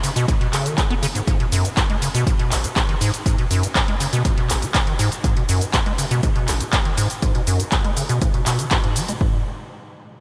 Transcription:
0.03 C#3, open hi-hat, cabasa
0.16 B2, closed hi-hat, cabasa
0.28 G#2, kick, closed hi-hat, cabasa
0.41 B2, closed hi-hat
0.53 C#3, clap, open hi-hat, cabasa
0.66 D#3, closed hi-hat, cabasa
0.78 F#3, kick, clap, closed hi-hat, cabasa
0.90 B3, closed hi-hat
1.03 C#3, open hi-hat, cabasa
1.15 G#2, closed hi-hat, cabasa
1.27 G#2, kick, closed hi-hat, cabasa
1.40 B2, closed hi-hat
1.52 F#2, open hi-hat, cabasa
1.65 G#2, closed hi-hat, cabasa
1.77 G#2, kick, clap, closed hi-hat, cabasa
1.90 G#3, closed hi-hat
2.02 C#3, open hi-hat, cabasa
2.14 B2, closed hi-hat, cabasa
2.27 kick, closed hi-hat, cabasa
2.39 B2, closed hi-hat
2.51 G#1, clap, open hi-hat, cabasa
2.64 F#3, closed hi-hat, cabasa
2.76 G#2, kick, clap, closed hi-hat, cabasa
2.89 D#3, closed hi-hat
3.01 G#2, open hi-hat, cabasa
3.14 closed hi-hat, cabasa
3.26 G#2, kick, closed hi-hat, cabasa
3.38 B2, closed hi-hat
3.51 F#2, open hi-hat, cabasa
3.63 G#2, closed hi-hat, cabasa
3.75 G#2, kick, clap, closed hi-hat, cabasa
3.88 G#3, closed hi-hat
4.00 C#3, open hi-hat, cabasa
4.13 B2, closed hi-hat, cabasa
4.25 kick, closed hi-hat, cabasa
4.37 B2, closed hi-hat
4.50 G#1, clap, open hi-hat, cabasa
4.62 F#3, closed hi-hat, cabasa
4.74 G#2, kick, clap, closed hi-hat, cabasa
4.87 D#3, closed hi-hat
4.99 G#2, open hi-hat, cabasa
5.12 closed hi-hat, cabasa
5.24 G#2, kick, closed hi-hat, cabasa
5.37 B2, closed hi-hat
5.49 F#2, open hi-hat, cabasa
5.61 G#2, closed hi-hat, cabasa
5.74 G#2, kick, clap, closed hi-hat, cabasa
5.86 G#3, closed hi-hat
5.98 C#3, open hi-hat, cabasa
6.11 B2, closed hi-hat, cabasa
6.23 G#2, kick, closed hi-hat, cabasa
6.36 B2, closed hi-hat
6.48 G#1, clap, open hi-hat, cabasa
6.60 F#3, closed hi-hat, cabasa
6.73 G#2, kick, clap, closed hi-hat, cabasa
6.85 D#3, closed hi-hat
6.97 G#2, open hi-hat, cabasa
7.10 closed hi-hat, cabasa
7.22 G#2, kick, closed hi-hat, cabasa
7.35 B2, closed hi-hat
7.47 F#2, open hi-hat, cabasa
7.60 G#2, closed hi-hat, cabasa
7.72 G#2, kick, clap, closed hi-hat, cabasa
7.84 G#3, closed hi-hat
7.97 C#3, open hi-hat, cabasa
8.09 B2, closed hi-hat, cabasa
8.22 G#2, kick, closed hi-hat, cabasa
8.34 B2, closed hi-hat
8.46 B2, clap, open hi-hat, cabasa
8.59 D#3, closed hi-hat, cabasa
8.71 G#2, kick, clap, closed hi-hat, cabasa
8.84 G#2, closed hi-hat
8.96 F#3, open hi-hat, cabasa
9.08 G#3, closed hi-hat, cabasa
9.21 G#2, kick

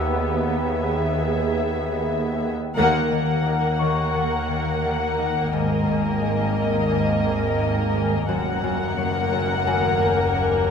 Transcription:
Already playing: D#2 B3 E6
0.01 G#4 E5
2.77 D#2 D#3 A#3 A#4 F#5
3.12 D#3
3.46 D#4
3.79 D#3 C#5 C#6
4.15 D#3
4.50 D#3
4.85 D#3
5.19 D#4
5.52 G#1 G#2 D#5
5.87 G#2
6.22 G#3
6.56 G#2
6.91 G#2
7.26 G#2
7.60 G#2
7.94 G#3
8.29 F#1 D#2 F#2 A#3 A#4 F#5
8.64 F#2
8.98 F#3
9.33 F#2
9.67 F#2 G#5
10.01 F#2
10.36 F#2

